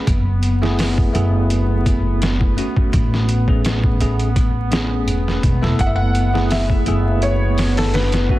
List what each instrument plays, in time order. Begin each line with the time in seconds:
0.06 upright bass F#1, ambient pad B3, kick, closed hi-hat
0.43 closed hi-hat
0.62 tine electric piano A3 B3 E4 G#4, snare
0.79 snare, open hi-hat
0.98 kick
1.13 upright bass F#1, tine electric piano A3 B3 E4 G#4, closed hi-hat
1.50 closed hi-hat
1.86 kick, closed hi-hat
2.22 snare, closed hi-hat
2.41 kick
2.57 tine electric piano A3 C#4 F#4, closed hi-hat
2.76 kick
2.93 upright bass A1, kick, closed hi-hat
3.14 snare
3.29 closed hi-hat
3.48 tine electric piano A3 C#4 G#4, kick
3.65 snare, closed hi-hat
3.84 kick
4.00 upright bass A1, tine electric piano A3 C#4 G#4, closed hi-hat
4.20 closed hi-hat
4.36 kick, closed hi-hat
4.71 tine electric piano A3 C#4 G#4, snare, closed hi-hat
5.08 upright bass E1, closed hi-hat
5.28 snare
5.43 upright bass E1, kick, closed hi-hat
5.62 upright bass E1, tine electric piano A3 B3 E4 A4, snare
5.79 upright bass F#1, felt piano F#5, kick, closed hi-hat
5.86 felt piano E5
5.96 felt piano F#5
6.15 closed hi-hat
6.33 tine electric piano A3 B3 E4 G#4, snare
6.51 felt piano E5, snare, open hi-hat
6.70 kick
6.86 upright bass F#1, tine electric piano A3 B3 E4 G#4, closed hi-hat
7.22 felt piano C#5, closed hi-hat
7.58 snare, open hi-hat
7.77 felt piano A4, snare, open hi-hat
7.94 felt piano B4, snare, open hi-hat
8.12 snare, closed hi-hat
8.29 tine electric piano A3 C#4 F#4, kick